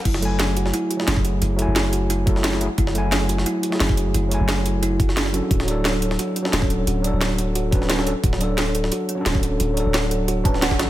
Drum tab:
CC |x---------------|----------------|----------------|----------------|
HH |x-x-x-x-x-x-x-x-|x-x-x-x-x-x-x-x-|x-x-x-x-x-x-x-x-|x-x-x-x-x-x-x-x-|
SD |-o--o--o---oo---|----o------ooo--|-o--o--o---oo---|----o------ooo--|
BD |o------------o--|----------o-----|o------------o--|----------o-----|

CC |----------------|----------------|----------------|----------------|
HH |x-x-x-x-x-x-x-x-|x-x-x-x-x-x-x-x-|x-x-x-x-x-x-x-x-|x-x-x-x-x-x-x-x-|
SD |-o--o--o---oo---|----o------ooo--|-o--o--o----o---|----o------oooo-|
BD |o------------o--|----------o-----|o------------o--|----------o--o--|